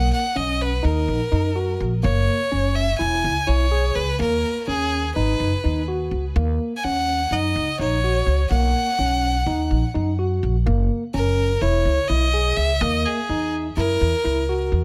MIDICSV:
0, 0, Header, 1, 4, 480
1, 0, Start_track
1, 0, Tempo, 479233
1, 2043, Time_signature, 9, 3, 24, 8
1, 14867, End_track
2, 0, Start_track
2, 0, Title_t, "Violin"
2, 0, Program_c, 0, 40
2, 0, Note_on_c, 0, 78, 99
2, 120, Note_off_c, 0, 78, 0
2, 130, Note_on_c, 0, 78, 88
2, 364, Note_on_c, 0, 75, 89
2, 380, Note_off_c, 0, 78, 0
2, 617, Note_on_c, 0, 71, 78
2, 632, Note_off_c, 0, 75, 0
2, 856, Note_on_c, 0, 70, 72
2, 871, Note_off_c, 0, 71, 0
2, 1810, Note_off_c, 0, 70, 0
2, 2036, Note_on_c, 0, 73, 89
2, 2760, Note_on_c, 0, 76, 92
2, 2775, Note_off_c, 0, 73, 0
2, 2980, Note_off_c, 0, 76, 0
2, 2986, Note_on_c, 0, 80, 92
2, 3477, Note_on_c, 0, 73, 94
2, 3492, Note_off_c, 0, 80, 0
2, 3956, Note_on_c, 0, 71, 83
2, 3971, Note_off_c, 0, 73, 0
2, 4201, Note_off_c, 0, 71, 0
2, 4211, Note_on_c, 0, 70, 86
2, 4656, Note_off_c, 0, 70, 0
2, 4688, Note_on_c, 0, 68, 79
2, 5134, Note_off_c, 0, 68, 0
2, 5159, Note_on_c, 0, 71, 68
2, 5843, Note_off_c, 0, 71, 0
2, 6778, Note_on_c, 0, 80, 71
2, 6850, Note_on_c, 0, 78, 101
2, 6865, Note_off_c, 0, 80, 0
2, 7343, Note_on_c, 0, 75, 87
2, 7358, Note_off_c, 0, 78, 0
2, 7803, Note_off_c, 0, 75, 0
2, 7809, Note_on_c, 0, 73, 94
2, 8487, Note_off_c, 0, 73, 0
2, 8522, Note_on_c, 0, 78, 92
2, 9922, Note_off_c, 0, 78, 0
2, 11162, Note_on_c, 0, 70, 88
2, 11631, Note_on_c, 0, 73, 83
2, 11646, Note_off_c, 0, 70, 0
2, 12099, Note_on_c, 0, 75, 94
2, 12114, Note_off_c, 0, 73, 0
2, 12587, Note_on_c, 0, 76, 103
2, 12602, Note_off_c, 0, 75, 0
2, 12830, Note_on_c, 0, 75, 99
2, 12845, Note_off_c, 0, 76, 0
2, 13077, Note_on_c, 0, 68, 81
2, 13092, Note_off_c, 0, 75, 0
2, 13556, Note_off_c, 0, 68, 0
2, 13787, Note_on_c, 0, 70, 99
2, 14710, Note_off_c, 0, 70, 0
2, 14867, End_track
3, 0, Start_track
3, 0, Title_t, "Tine electric piano"
3, 0, Program_c, 1, 4
3, 0, Note_on_c, 1, 58, 80
3, 241, Note_off_c, 1, 58, 0
3, 358, Note_on_c, 1, 61, 70
3, 723, Note_off_c, 1, 61, 0
3, 830, Note_on_c, 1, 63, 84
3, 1199, Note_off_c, 1, 63, 0
3, 1317, Note_on_c, 1, 63, 75
3, 1501, Note_off_c, 1, 63, 0
3, 1557, Note_on_c, 1, 66, 74
3, 1924, Note_off_c, 1, 66, 0
3, 2035, Note_on_c, 1, 58, 81
3, 2403, Note_off_c, 1, 58, 0
3, 2520, Note_on_c, 1, 61, 80
3, 2886, Note_off_c, 1, 61, 0
3, 2996, Note_on_c, 1, 64, 82
3, 3364, Note_off_c, 1, 64, 0
3, 3474, Note_on_c, 1, 64, 74
3, 3661, Note_off_c, 1, 64, 0
3, 3721, Note_on_c, 1, 68, 76
3, 4087, Note_off_c, 1, 68, 0
3, 4197, Note_on_c, 1, 58, 75
3, 4565, Note_off_c, 1, 58, 0
3, 4683, Note_on_c, 1, 61, 76
3, 5049, Note_off_c, 1, 61, 0
3, 5168, Note_on_c, 1, 63, 83
3, 5531, Note_off_c, 1, 63, 0
3, 5648, Note_on_c, 1, 63, 69
3, 5830, Note_off_c, 1, 63, 0
3, 5891, Note_on_c, 1, 66, 74
3, 6253, Note_off_c, 1, 66, 0
3, 6371, Note_on_c, 1, 58, 82
3, 6733, Note_off_c, 1, 58, 0
3, 6859, Note_on_c, 1, 61, 71
3, 7218, Note_off_c, 1, 61, 0
3, 7334, Note_on_c, 1, 63, 80
3, 7695, Note_off_c, 1, 63, 0
3, 7820, Note_on_c, 1, 63, 73
3, 7996, Note_off_c, 1, 63, 0
3, 8054, Note_on_c, 1, 66, 74
3, 8414, Note_off_c, 1, 66, 0
3, 8531, Note_on_c, 1, 58, 80
3, 8893, Note_off_c, 1, 58, 0
3, 9007, Note_on_c, 1, 61, 74
3, 9370, Note_off_c, 1, 61, 0
3, 9485, Note_on_c, 1, 63, 81
3, 9848, Note_off_c, 1, 63, 0
3, 9960, Note_on_c, 1, 63, 69
3, 10143, Note_off_c, 1, 63, 0
3, 10205, Note_on_c, 1, 66, 74
3, 10567, Note_off_c, 1, 66, 0
3, 10680, Note_on_c, 1, 58, 82
3, 11044, Note_off_c, 1, 58, 0
3, 11155, Note_on_c, 1, 61, 79
3, 11521, Note_off_c, 1, 61, 0
3, 11639, Note_on_c, 1, 64, 87
3, 12003, Note_off_c, 1, 64, 0
3, 12113, Note_on_c, 1, 64, 74
3, 12297, Note_off_c, 1, 64, 0
3, 12356, Note_on_c, 1, 68, 72
3, 12720, Note_off_c, 1, 68, 0
3, 12841, Note_on_c, 1, 58, 87
3, 13203, Note_off_c, 1, 58, 0
3, 13319, Note_on_c, 1, 63, 79
3, 13681, Note_off_c, 1, 63, 0
3, 13797, Note_on_c, 1, 64, 83
3, 14160, Note_off_c, 1, 64, 0
3, 14267, Note_on_c, 1, 64, 73
3, 14451, Note_off_c, 1, 64, 0
3, 14514, Note_on_c, 1, 66, 72
3, 14867, Note_off_c, 1, 66, 0
3, 14867, End_track
4, 0, Start_track
4, 0, Title_t, "Upright bass"
4, 0, Program_c, 2, 32
4, 362, Note_on_c, 2, 35, 75
4, 787, Note_off_c, 2, 35, 0
4, 843, Note_on_c, 2, 39, 78
4, 1055, Note_off_c, 2, 39, 0
4, 1084, Note_on_c, 2, 34, 86
4, 1189, Note_off_c, 2, 34, 0
4, 1322, Note_on_c, 2, 42, 87
4, 1747, Note_off_c, 2, 42, 0
4, 1806, Note_on_c, 2, 34, 89
4, 2018, Note_off_c, 2, 34, 0
4, 2046, Note_on_c, 2, 30, 103
4, 2258, Note_off_c, 2, 30, 0
4, 2527, Note_on_c, 2, 30, 70
4, 2951, Note_off_c, 2, 30, 0
4, 3008, Note_on_c, 2, 28, 77
4, 3219, Note_off_c, 2, 28, 0
4, 3248, Note_on_c, 2, 37, 87
4, 3353, Note_off_c, 2, 37, 0
4, 3485, Note_on_c, 2, 35, 75
4, 3911, Note_off_c, 2, 35, 0
4, 3960, Note_on_c, 2, 37, 81
4, 4175, Note_off_c, 2, 37, 0
4, 4204, Note_on_c, 2, 39, 104
4, 4418, Note_off_c, 2, 39, 0
4, 4681, Note_on_c, 2, 39, 73
4, 5109, Note_off_c, 2, 39, 0
4, 5168, Note_on_c, 2, 32, 78
4, 5380, Note_off_c, 2, 32, 0
4, 5408, Note_on_c, 2, 30, 80
4, 5514, Note_off_c, 2, 30, 0
4, 5653, Note_on_c, 2, 39, 76
4, 6075, Note_off_c, 2, 39, 0
4, 6123, Note_on_c, 2, 37, 80
4, 6337, Note_off_c, 2, 37, 0
4, 6368, Note_on_c, 2, 39, 103
4, 6580, Note_off_c, 2, 39, 0
4, 6854, Note_on_c, 2, 39, 77
4, 7275, Note_off_c, 2, 39, 0
4, 7320, Note_on_c, 2, 42, 84
4, 7535, Note_off_c, 2, 42, 0
4, 7569, Note_on_c, 2, 37, 86
4, 7674, Note_off_c, 2, 37, 0
4, 7805, Note_on_c, 2, 34, 83
4, 8230, Note_off_c, 2, 34, 0
4, 8277, Note_on_c, 2, 37, 81
4, 8493, Note_off_c, 2, 37, 0
4, 8519, Note_on_c, 2, 35, 104
4, 8734, Note_off_c, 2, 35, 0
4, 9000, Note_on_c, 2, 35, 84
4, 9427, Note_off_c, 2, 35, 0
4, 9479, Note_on_c, 2, 39, 87
4, 9693, Note_off_c, 2, 39, 0
4, 9723, Note_on_c, 2, 34, 81
4, 9830, Note_off_c, 2, 34, 0
4, 9968, Note_on_c, 2, 42, 81
4, 10390, Note_off_c, 2, 42, 0
4, 10446, Note_on_c, 2, 34, 82
4, 10657, Note_off_c, 2, 34, 0
4, 10683, Note_on_c, 2, 30, 103
4, 10895, Note_off_c, 2, 30, 0
4, 11159, Note_on_c, 2, 30, 84
4, 11584, Note_off_c, 2, 30, 0
4, 11634, Note_on_c, 2, 28, 88
4, 11849, Note_off_c, 2, 28, 0
4, 11872, Note_on_c, 2, 37, 84
4, 11982, Note_off_c, 2, 37, 0
4, 12113, Note_on_c, 2, 35, 82
4, 12540, Note_off_c, 2, 35, 0
4, 12590, Note_on_c, 2, 37, 83
4, 12806, Note_off_c, 2, 37, 0
4, 12831, Note_on_c, 2, 39, 112
4, 13046, Note_off_c, 2, 39, 0
4, 13312, Note_on_c, 2, 40, 71
4, 13738, Note_off_c, 2, 40, 0
4, 13791, Note_on_c, 2, 42, 78
4, 14005, Note_off_c, 2, 42, 0
4, 14034, Note_on_c, 2, 40, 86
4, 14140, Note_off_c, 2, 40, 0
4, 14273, Note_on_c, 2, 37, 83
4, 14698, Note_off_c, 2, 37, 0
4, 14743, Note_on_c, 2, 40, 78
4, 14867, Note_off_c, 2, 40, 0
4, 14867, End_track
0, 0, End_of_file